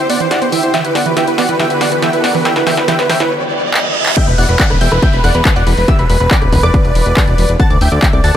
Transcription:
Already playing: string section D3 C4 E4 G4, riser
0.10 synth arpeggio sound B3, supersaw synth D5 F#5, open hi-hat
0.20 synth arpeggio sound E3, supersaw synth C5, closed hi-hat
0.31 synth arpeggio sound E4, supersaw synth D5 F#5, snare, closed hi-hat
0.42 synth arpeggio sound B3, supersaw synth C5, closed hi-hat
0.52 synth arpeggio sound E3, supersaw synth E5 G5, open hi-hat
0.63 synth arpeggio sound E4, supersaw synth C5, closed hi-hat
0.74 string section D3 B3 F#4, synth arpeggio sound E3, supersaw synth E5 G5, snare, closed hi-hat
0.85 synth arpeggio sound E4, supersaw synth B4, closed hi-hat
0.95 synth arpeggio sound B3, supersaw synth D5 F#5, snare, open hi-hat
1.06 synth arpeggio sound E3, supersaw synth B4, closed hi-hat
1.17 synth arpeggio sound E3, supersaw synth E5 G5, snare, closed hi-hat
1.27 synth arpeggio sound E4, supersaw synth B4, closed hi-hat
1.38 synth arpeggio sound B3, supersaw synth D5 F#5, snare, open hi-hat
1.49 synth arpeggio sound E3, supersaw synth B4, closed hi-hat
1.60 synth arpeggio sound E3, supersaw synth E5 G5, snare, closed hi-hat
1.70 synth arpeggio sound E4, supersaw synth B4, closed hi-hat
1.81 synth arpeggio sound B3, supersaw synth D5 F#5, snare, open hi-hat
1.92 synth arpeggio sound E3, supersaw synth B4, closed hi-hat
2.02 synth arpeggio sound E3, supersaw synth E5 G5, snare, closed hi-hat
2.13 synth arpeggio sound E4, supersaw synth B4, closed hi-hat
2.24 synth arpeggio sound B3, supersaw synth D5 F#5, snare, open hi-hat
2.35 synth arpeggio sound E3, supersaw synth B4, open hi-hat
2.45 synth arpeggio sound E3, supersaw synth E5 G5, snare, closed hi-hat
2.56 synth arpeggio sound E4, supersaw synth B4, snare, closed hi-hat
2.67 synth arpeggio sound E3, supersaw synth E5 G5, snare, open hi-hat
2.77 synth arpeggio sound E4, supersaw synth B4, snare, closed hi-hat
2.88 synth arpeggio sound E3, supersaw synth E5 G5, snare, closed hi-hat
2.99 synth arpeggio sound E4, supersaw synth B4, snare, closed hi-hat
3.10 synth arpeggio sound E3, supersaw synth E5 G5, snare, open hi-hat
3.20 synth arpeggio sound E4, supersaw synth B4, snare, closed hi-hat
3.31 reverse cymbal
3.74 clap
4.06 clap
4.17 supersaw synth E5 G5, synth pluck G6, kick, closed hi-hat, crash, downlifter
4.27 analog synth bass E1, supersaw synth B4, synth pluck B5, closed hi-hat
4.38 analog synth bass E1, supersaw synth D5 F#5, synth pluck F#6, open hi-hat
4.49 analog synth bass E1, supersaw synth B4, synth pluck B5, closed hi-hat
4.60 supersaw synth D5 F#5, synth pluck F#6, kick, clap, closed hi-hat
4.70 analog synth bass D1, supersaw synth B4, synth pluck B5, cross-stick, closed hi-hat
4.81 analog synth bass E1, supersaw synth E5 G5, synth pluck G6, open hi-hat
4.92 analog synth bass E1, supersaw synth B4, synth pluck B5, cross-stick, closed hi-hat
5.02 supersaw synth E5 G5, synth pluck G6, kick, closed hi-hat
5.13 analog synth bass E1, supersaw synth B4, synth pluck B5, closed hi-hat
5.24 analog synth bass E1, supersaw synth D5 F#5, synth pluck F#6, cross-stick, open hi-hat
5.35 analog synth bass E1, supersaw synth B4, synth pluck B5, closed hi-hat
5.45 supersaw synth B4, synth pluck B5, kick, clap, closed hi-hat
5.56 analog synth bass E1, supersaw synth D5 F#5, synth pluck F#6, closed hi-hat
5.67 analog synth bass E1, supersaw synth B4, synth pluck B5, open hi-hat
5.77 analog synth bass E1, supersaw synth B4, synth pluck B5, open hi-hat
5.88 supersaw synth G4 E5, synth pluck E6, kick, closed hi-hat
5.99 analog synth bass E1, supersaw synth B4, synth pluck B5, closed hi-hat
6.10 analog synth bass E1, supersaw synth B4, synth pluck B5, open hi-hat
6.20 analog synth bass E1, supersaw synth B4, synth pluck B5, closed hi-hat
6.31 supersaw synth B4 D5, synth pluck D6, kick, clap, closed hi-hat
6.42 analog synth bass D1, supersaw synth B4, synth pluck B5, cross-stick, closed hi-hat
6.52 analog synth bass E1, supersaw synth B4, synth pluck B5, kick, open hi-hat
6.63 analog synth bass E1, supersaw synth B4 D5, synth pluck D6, cross-stick, closed hi-hat
6.74 kick, closed hi-hat
6.85 analog synth bass E1, closed hi-hat
6.95 analog synth bass E1, open hi-hat
7.06 analog synth bass E1, closed hi-hat
7.17 kick, clap, open hi-hat
7.27 analog synth bass E1, closed hi-hat
7.38 analog synth bass E1, open hi-hat
7.49 analog synth bass E1, closed hi-hat
7.60 supersaw synth F#5 A5, synth pluck A6, kick, closed hi-hat
7.70 analog synth bass D2, supersaw synth D5, synth pluck D6, closed hi-hat
7.81 analog synth bass D2, supersaw synth E5 G5, synth pluck G6, open hi-hat
7.92 analog synth bass D2, supersaw synth D5, synth pluck D6, closed hi-hat
8.02 supersaw synth E5 G5, synth pluck G6, kick, clap, closed hi-hat
8.13 analog synth bass C2, supersaw synth D5, synth pluck D6, cross-stick, closed hi-hat
8.24 analog synth bass D2, supersaw synth F#5 A5, synth pluck A6, open hi-hat

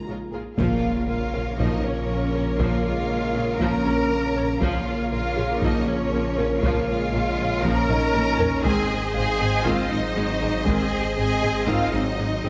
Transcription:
Already playing: trombone section C#3 G#3, felt piano D#4 D#5, french horn section A#4
0.07 double bass section A#1, cello section A#2, viola section G#3 F4, synth pluck F4, violin section A#4 C#5
0.32 double bass section A#1, cello section A#2, viola section G#3 F4, synth pluck G#4, violin section G#4 A#4
0.57 double bass section A#1, detuned saw bass A#1, trombone section C#3 A#3, viola section F3 A#4, synth pluck A#3, french horn section A#3, cello section F4, violin section C#5 F5, taiko, impact
1.08 double bass section A#1, french horn section A#3, viola section A#3, cello section F4, synth pluck A#4, violin section F5
1.34 double bass section A#1, viola section C#4, synth pluck A#4, felt piano F5
1.59 double bass section A#1, viola section F3, french horn section F#3, synth pluck A#3, cello section D#4, violin section D#5, taiko
1.84 double bass section A#1, french horn section F3, cello section C#4, viola section C#4, synth pluck A#4, violin section C#5
2.09 double bass section A#1, viola section A#3, synth pluck C#4
2.34 double bass section A#1, viola section C#4, synth pluck A#4
2.59 double bass section A#1, viola section F3, synth pluck A#3, french horn section A#3, cello section F4, violin section F5, taiko
2.85 french horn section G#3, cello section F4, violin section F5
3.09 double bass section A#1, viola section A#3, synth pluck A#4
3.35 double bass section A#1, viola section C#4, synth pluck A#4
3.60 double bass section A#1, viola section F3, synth pluck A#3, french horn section C#4, cello section A#4, violin section A#5, taiko
3.85 double bass section A#1, viola section C#4, synth pluck A#4
4.11 double bass section A#1, viola section A#3, synth pluck C#4
4.36 double bass section A#1, viola section C#4, synth pluck A#4
4.61 double bass section A#1, detuned saw bass A#1, trombone section C#3 A#3, viola section F3 A#4, synth pluck A#3, french horn section A#3, cello section F4, violin section C#5 F5, taiko
5.12 double bass section A#1, viola section A#3, french horn section A#3, cello section F4, synth pluck A#4, violin section F5
5.36 double bass section A#1, viola section C#4, felt piano G#4, synth pluck A#4
5.61 double bass section A#1, viola section F3, french horn section F#3, synth pluck A#3, cello section D#4, violin section D#5, taiko
5.87 double bass section A#1, french horn section F3, cello section C#4, viola section C#4, synth pluck A#4, violin section C#5
6.13 double bass section A#1, viola section A#3, synth pluck C#4
6.38 double bass section A#1, felt piano A#3 A#4, viola section C#4, synth pluck A#4
6.62 double bass section A#1, viola section F3, synth pluck A#3, french horn section A#3, cello section F4, violin section F5, taiko
6.88 french horn section G#3, cello section F4, violin section F5
7.13 double bass section A#1, viola section A#3, synth pluck A#4
7.38 double bass section A#1, viola section C#4, synth pluck A#4
7.63 double bass section A#1, viola section F3, synth pluck A#3, french horn section C#4, cello section A#4, violin section A#5, taiko
7.89 double bass section A#1, viola section C#4, felt piano D#4 D#5, synth pluck A#4, taiko low-mid
8.14 double bass section A#1, viola section A#3, synth pluck C#4, taiko high
8.39 double bass section A#1, viola section C#4, synth pluck A#4, taiko low
8.63 detuned saw bass G#1, double bass section G#1, viola section D#3 C5, trombone section D#3 C4, synth pluck G#3, french horn section C4, cello section G#4, violin section D#5 G#5, taiko
9.14 double bass section G#1, viola section G#3, french horn section C4, cello section G#4, synth pluck G#4, felt piano F5, violin section G#5
9.40 double bass section G#1, viola section C4, synth pluck G#4
9.65 double bass section G#1, viola section D#3, trombone section D#3 C4, synth pluck G#3, french horn section G#3, cello section F4, violin section F5, taiko
9.91 double bass section G#1, french horn section F#3, viola section C4, cello section D#4, synth pluck G#4, violin section D#5
10.16 double bass section G#1, viola section G#3, synth pluck C4
10.42 double bass section G#1, viola section C4, synth pluck G#4
10.66 double bass section G#1, viola section D#3, trombone section D#3 C4, synth pluck G#3, french horn section C4, cello section G#4, violin section G#5, taiko
11.16 double bass section G#1, viola section G#3, french horn section C4, synth pluck G#4, cello section G#4, violin section G#5
11.42 double bass section G#1, viola section C4, synth pluck G#4, felt piano D#5
11.66 double bass section G#1, viola section D#3, trombone section D#3 C4, synth pluck G#3, french horn section G#3, cello section F4, violin section F5, taiko
11.92 double bass section G#1, french horn section F#3, viola section C4, cello section D#4, synth pluck G#4, violin section D#5
12.19 double bass section G#1, viola section G#3, synth pluck C4
12.44 double bass section G#1, viola section C4, synth pluck G#4

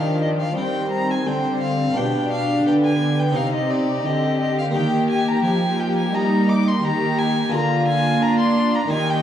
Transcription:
Already playing: harpsichord D#3 C4 D#4 G4, cello section D#3, viola section F3, violin section D4 G4, violin F5
0.22 violin D#5
0.40 violin F5
0.56 viola section D#3, cello section G3, harpsichord G3, violin section C4 C5, violin G5
0.91 violin A#5
1.11 violin G#5
1.26 cello section D3, harpsichord D3, viola section G3, violin section C4 C5, violin G5
1.61 violin F5
1.93 cello section B2, harpsichord D4 F4 G4, violin section D4 G4, viola section D4, violin G5
1.97 harpsichord B2
2.32 violin F5
2.66 cello section D3, harpsichord D3, violin section B3, violin G5
2.84 violin G#5
3.19 violin G5
3.32 harpsichord C4 D#4 G4, violin section D#4
3.36 cello section C3, harpsichord C3, viola section C4, violin section G4, violin F5
3.54 violin D#5
3.70 violin D5
4.06 harpsichord D3, cello section D3, viola section C4, violin section G4, violin D#5
4.40 violin D#5
4.59 violin F5
4.71 harpsichord A#3 D#4 G4
4.75 cello section D#3, harpsichord D#3, viola section A#3, violin section G4, violin G5
5.10 violin G#5
5.28 violin A#5
5.44 harpsichord F3, cello section F3, violin section D#4, violin G#5
5.80 violin G5
5.98 violin G#5
6.14 harpsichord G3, cello section G3, violin section D#4, violin A#5
6.49 violin D6
6.68 violin C6
6.83 harpsichord D#3, cello section D#3, violin section D#4 G4, violin A#5
7.19 violin G#5
7.49 harpsichord A#3 F4 G#4, violin section F4
7.53 cello section D3, harpsichord D3, viola section A#3, violin section F4, violin A#5
7.87 violin G#5
8.22 harpsichord D4, cello section D4, violin section F4, violin A#5
8.39 violin C6
8.75 violin A#5
8.87 harpsichord A#3 D#4 G4, violin section D#4 G4
8.92 cello section D#3, harpsichord D#3, viola section A#3, violin G#5
9.10 violin G5

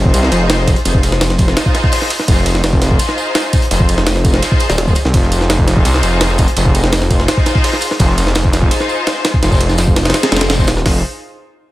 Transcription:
Already playing: detuned saw bass F1, string section D#4 F4 G#4 C5
0.05 kick
0.14 detuned saw bass C2, ride, tambourine
0.23 snare
0.32 detuned saw bass F1, ride, tambourine
0.50 snare, ride, tambourine
0.59 snare
0.68 kick, ride, tambourine
0.76 closed hi-hat
0.85 detuned saw bass F1, string section D#4 F4 G#4 C5, ride, tambourine
0.94 kick
1.03 ride, tambourine
1.12 snare
1.21 snare, ride, tambourine
1.30 snare
1.38 string section D#4 F4 G#4 C5, kick, ride, tambourine
1.48 snare
1.57 snare, ride, tambourine
1.66 kick, snare
1.75 snare, ride, tambourine
1.83 kick, snare
1.92 snare, open hi-hat, ride
2.02 snare
2.10 ride, tambourine
2.19 snare
2.28 detuned saw bass F1, string section D#4 F4 G#4 C5, kick, ride, tambourine
2.37 snare
2.46 ride, tambourine
2.55 snare
2.63 snare, ride, tambourine
2.73 kick
2.82 string section D#4 F4 G#4 C5, snare, ride, tambourine
2.91 kick
2.99 ride, tambourine
3.09 snare
3.18 tambourine
3.35 snare, ride, tambourine
3.44 snare
3.53 kick, ride, tambourine
3.62 closed hi-hat
3.71 detuned saw bass F1, string section D#4 F4 G#4 C5, ride, tambourine
3.80 kick
3.89 ride, tambourine
3.98 snare
4.07 snare, ride, tambourine
4.16 snare
4.24 string section D#4 F4 G#4 C5, kick, ride, tambourine
4.34 snare
4.42 snare, ride, tambourine
4.52 kick
4.60 ride, tambourine
4.69 detuned saw bass D#1, snare, tambourine
4.78 snare, ride
4.87 string section D#4 F4 G#4 C5, kick, tambourine
4.95 ride, tambourine
5.05 detuned saw bass C2, snare
5.14 detuned saw bass F1, string section D#4 F4 G#4 C5, kick, ride, tambourine
5.23 snare
5.32 ride, tambourine
5.41 snare
5.50 snare, ride, tambourine
5.59 kick
5.67 string section D#4 F4 G#4 C5, snare, ride, tambourine
5.77 kick
5.85 detuned saw bass C2, ride, tambourine
5.94 snare
6.03 detuned saw bass F1, ride, tambourine
6.21 snare, ride, tambourine
6.29 snare
6.38 kick, ride, tambourine
6.48 closed hi-hat
6.56 detuned saw bass F1, string section D#4 F4 G#4 C5, ride, tambourine
6.66 kick
6.75 ride, tambourine
6.84 snare
6.92 snare, ride, tambourine
7.02 snare
7.10 string section D#4 F4 G#4 C5, kick, ride, tambourine
7.20 snare
7.28 snare, ride, tambourine
7.37 kick, snare
7.46 snare, ride, tambourine
7.55 kick, snare
7.64 snare, open hi-hat, ride
7.73 snare
7.81 ride, tambourine
7.91 snare
7.99 detuned saw bass F1, string section D#4 F4 G#4 C5, kick, ride, tambourine
8.09 snare
8.18 ride, tambourine
8.27 snare
8.35 snare, ride, tambourine
8.45 kick
8.53 string section D#4 F4 G#4 C5, snare, ride, tambourine
8.62 kick
8.71 ride, tambourine
8.80 snare
8.89 tambourine
9.07 snare, ride, tambourine
9.16 snare
9.25 snare, ride, tambourine
9.34 kick
9.42 detuned saw bass F1, string section D#4 F4 G#4 C5, snare, ride, tambourine
9.52 kick, snare, tambourine
9.61 ride
9.69 snare, tambourine
9.78 snare, ride, tambourine
9.88 kick
9.96 string section D#4 F4 G#4 C5, snare, ride, tambourine
10.05 snare, ride
10.10 snare, ride
10.14 snare, ride, tambourine
10.22 snare, ride
10.32 detuned saw bass F1, snare, ride, tambourine
10.37 snare, ride, tambourine
10.41 snare, ride
10.50 snare, ride, tambourine
10.54 snare, tambourine
10.58 string section D#4 F4 G#4 C5, kick, snare, tambourine
10.63 snare, tambourine
10.67 detuned saw bass D#1, snare, ride, tambourine
10.77 snare
10.85 detuned saw bass F1, string section D#4 F4 G#4 C5, kick, snare, open hi-hat

